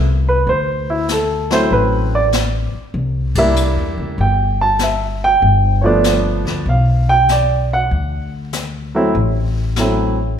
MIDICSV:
0, 0, Header, 1, 5, 480
1, 0, Start_track
1, 0, Tempo, 620476
1, 361, Time_signature, 4, 2, 24, 8
1, 8042, End_track
2, 0, Start_track
2, 0, Title_t, "Upright piano"
2, 0, Program_c, 0, 0
2, 221, Note_on_c, 0, 71, 75
2, 366, Note_off_c, 0, 71, 0
2, 379, Note_on_c, 0, 72, 78
2, 682, Note_off_c, 0, 72, 0
2, 696, Note_on_c, 0, 64, 64
2, 843, Note_off_c, 0, 64, 0
2, 866, Note_on_c, 0, 69, 64
2, 1165, Note_off_c, 0, 69, 0
2, 1166, Note_on_c, 0, 54, 53
2, 1170, Note_on_c, 0, 57, 51
2, 1175, Note_on_c, 0, 60, 48
2, 1181, Note_on_c, 0, 64, 60
2, 1181, Note_on_c, 0, 72, 91
2, 1326, Note_off_c, 0, 72, 0
2, 1336, Note_on_c, 0, 71, 71
2, 1640, Note_off_c, 0, 71, 0
2, 1664, Note_on_c, 0, 74, 79
2, 1753, Note_off_c, 0, 74, 0
2, 1771, Note_off_c, 0, 54, 0
2, 1773, Note_off_c, 0, 57, 0
2, 1775, Note_off_c, 0, 60, 0
2, 1778, Note_off_c, 0, 64, 0
2, 2612, Note_on_c, 0, 55, 59
2, 2614, Note_on_c, 0, 58, 57
2, 2619, Note_on_c, 0, 76, 78
2, 2622, Note_on_c, 0, 62, 54
2, 2624, Note_on_c, 0, 64, 62
2, 3214, Note_off_c, 0, 55, 0
2, 3215, Note_off_c, 0, 58, 0
2, 3218, Note_off_c, 0, 76, 0
2, 3219, Note_off_c, 0, 62, 0
2, 3220, Note_off_c, 0, 64, 0
2, 3255, Note_on_c, 0, 79, 73
2, 3559, Note_off_c, 0, 79, 0
2, 3569, Note_on_c, 0, 81, 84
2, 3720, Note_off_c, 0, 81, 0
2, 3740, Note_on_c, 0, 76, 56
2, 4042, Note_off_c, 0, 76, 0
2, 4055, Note_on_c, 0, 79, 97
2, 4498, Note_off_c, 0, 79, 0
2, 4498, Note_on_c, 0, 73, 50
2, 4515, Note_on_c, 0, 53, 59
2, 4518, Note_off_c, 0, 73, 0
2, 4522, Note_on_c, 0, 59, 58
2, 4523, Note_on_c, 0, 57, 59
2, 4529, Note_on_c, 0, 62, 68
2, 4531, Note_on_c, 0, 74, 73
2, 5126, Note_off_c, 0, 53, 0
2, 5129, Note_off_c, 0, 59, 0
2, 5130, Note_off_c, 0, 57, 0
2, 5132, Note_off_c, 0, 62, 0
2, 5134, Note_off_c, 0, 74, 0
2, 5175, Note_on_c, 0, 77, 65
2, 5480, Note_off_c, 0, 77, 0
2, 5487, Note_on_c, 0, 79, 101
2, 5639, Note_off_c, 0, 79, 0
2, 5663, Note_on_c, 0, 74, 60
2, 5964, Note_off_c, 0, 74, 0
2, 5983, Note_on_c, 0, 78, 85
2, 6422, Note_off_c, 0, 78, 0
2, 6921, Note_on_c, 0, 54, 61
2, 6924, Note_on_c, 0, 57, 52
2, 6931, Note_on_c, 0, 60, 57
2, 6932, Note_on_c, 0, 64, 72
2, 7064, Note_off_c, 0, 54, 0
2, 7066, Note_off_c, 0, 57, 0
2, 7069, Note_off_c, 0, 60, 0
2, 7070, Note_off_c, 0, 64, 0
2, 7567, Note_on_c, 0, 54, 54
2, 7575, Note_on_c, 0, 57, 48
2, 7578, Note_on_c, 0, 60, 48
2, 7579, Note_on_c, 0, 64, 61
2, 7852, Note_off_c, 0, 54, 0
2, 7857, Note_off_c, 0, 57, 0
2, 7858, Note_off_c, 0, 60, 0
2, 7859, Note_off_c, 0, 64, 0
2, 8042, End_track
3, 0, Start_track
3, 0, Title_t, "Upright bass"
3, 0, Program_c, 1, 32
3, 0, Note_on_c, 1, 36, 74
3, 326, Note_off_c, 1, 36, 0
3, 361, Note_on_c, 1, 38, 79
3, 1290, Note_off_c, 1, 38, 0
3, 1320, Note_on_c, 1, 33, 79
3, 2090, Note_off_c, 1, 33, 0
3, 2274, Note_on_c, 1, 36, 80
3, 2886, Note_off_c, 1, 36, 0
3, 2912, Note_on_c, 1, 40, 55
3, 3065, Note_off_c, 1, 40, 0
3, 3075, Note_on_c, 1, 37, 66
3, 3226, Note_off_c, 1, 37, 0
3, 3233, Note_on_c, 1, 31, 80
3, 4166, Note_off_c, 1, 31, 0
3, 4194, Note_on_c, 1, 31, 82
3, 4968, Note_off_c, 1, 31, 0
3, 4990, Note_on_c, 1, 38, 72
3, 5143, Note_off_c, 1, 38, 0
3, 5150, Note_on_c, 1, 35, 81
3, 6084, Note_off_c, 1, 35, 0
3, 6120, Note_on_c, 1, 38, 76
3, 7049, Note_off_c, 1, 38, 0
3, 7076, Note_on_c, 1, 33, 85
3, 8007, Note_off_c, 1, 33, 0
3, 8042, End_track
4, 0, Start_track
4, 0, Title_t, "Muted upright bass strokes"
4, 2117, Note_on_c, 9, 29, 36
4, 2194, Note_off_c, 9, 29, 0
4, 8042, End_track
5, 0, Start_track
5, 0, Title_t, "Drums"
5, 360, Note_on_c, 9, 25, 42
5, 841, Note_on_c, 9, 44, 59
5, 843, Note_on_c, 9, 38, 53
5, 918, Note_off_c, 9, 44, 0
5, 920, Note_off_c, 9, 38, 0
5, 1164, Note_on_c, 9, 38, 52
5, 1241, Note_off_c, 9, 38, 0
5, 1322, Note_off_c, 9, 25, 0
5, 1322, Note_on_c, 9, 25, 47
5, 1798, Note_on_c, 9, 44, 54
5, 1801, Note_on_c, 9, 38, 54
5, 1876, Note_off_c, 9, 44, 0
5, 1878, Note_off_c, 9, 38, 0
5, 2274, Note_off_c, 9, 25, 0
5, 2274, Note_on_c, 9, 25, 42
5, 2593, Note_on_c, 9, 51, 72
5, 2595, Note_on_c, 9, 36, 80
5, 2671, Note_off_c, 9, 51, 0
5, 2673, Note_off_c, 9, 36, 0
5, 2755, Note_on_c, 9, 44, 55
5, 2832, Note_off_c, 9, 44, 0
5, 3238, Note_off_c, 9, 25, 0
5, 3238, Note_on_c, 9, 25, 41
5, 3704, Note_on_c, 9, 44, 51
5, 3706, Note_on_c, 9, 38, 54
5, 3781, Note_off_c, 9, 44, 0
5, 3784, Note_off_c, 9, 38, 0
5, 4196, Note_off_c, 9, 25, 0
5, 4196, Note_on_c, 9, 25, 39
5, 4673, Note_on_c, 9, 44, 57
5, 4675, Note_on_c, 9, 38, 53
5, 4750, Note_off_c, 9, 44, 0
5, 4752, Note_off_c, 9, 38, 0
5, 5001, Note_on_c, 9, 38, 33
5, 5078, Note_off_c, 9, 38, 0
5, 5160, Note_off_c, 9, 25, 0
5, 5160, Note_on_c, 9, 25, 44
5, 5637, Note_on_c, 9, 44, 51
5, 5639, Note_on_c, 9, 38, 56
5, 5714, Note_off_c, 9, 44, 0
5, 5716, Note_off_c, 9, 38, 0
5, 6126, Note_off_c, 9, 25, 0
5, 6126, Note_on_c, 9, 25, 38
5, 6597, Note_on_c, 9, 44, 49
5, 6599, Note_on_c, 9, 38, 56
5, 6674, Note_off_c, 9, 44, 0
5, 6676, Note_off_c, 9, 38, 0
5, 7076, Note_off_c, 9, 25, 0
5, 7076, Note_on_c, 9, 25, 43
5, 7550, Note_on_c, 9, 44, 45
5, 7553, Note_on_c, 9, 38, 56
5, 7628, Note_off_c, 9, 44, 0
5, 7630, Note_off_c, 9, 38, 0
5, 8042, Note_off_c, 9, 25, 0
5, 8042, End_track
0, 0, End_of_file